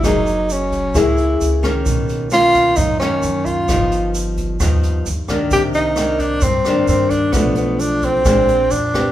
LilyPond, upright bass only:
\new Staff \with { instrumentName = "Upright bass" } { \clef bass \time 4/4 \key b \phrygian \tempo 4 = 131 fis,,2 cis,4 cis,4 | b,,2 fis,4 fis,4 | g,,2 dis,4 dis,4 | c,2 g,4 g,4 |
b,,2 bes,,4 f,4 | }